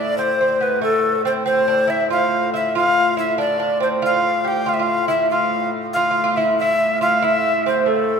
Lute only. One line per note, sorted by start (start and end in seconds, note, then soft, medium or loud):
0.00 0.18 D4 medium
0.18 0.39 C4 medium
0.41 0.59 C4 medium
0.61 0.81 B3 medium
0.81 1.25 A3 medium
1.25 1.44 C4 medium
1.46 1.67 C4 medium
1.68 1.87 D4 medium
1.87 2.10 E4 medium
2.10 2.53 F4 medium
2.54 2.75 E4 medium
2.75 3.17 F4 medium
3.17 3.38 E4 medium
3.38 3.58 D4 medium
3.60 3.82 D4 medium
3.80 4.03 C4 medium
4.02 4.46 F4 medium
4.44 4.67 G4 medium
4.66 4.78 F4 medium
4.79 5.08 F4 medium
5.08 5.31 E4 medium
5.32 5.71 F4 medium
5.96 6.09 F4 medium
6.11 6.23 F4 medium
6.24 6.37 F4 medium
6.37 6.60 E4 medium
6.61 7.01 E4 medium
7.01 7.22 F4 medium
7.22 7.67 E4 medium
7.66 7.85 C4 medium
7.86 8.20 A3 medium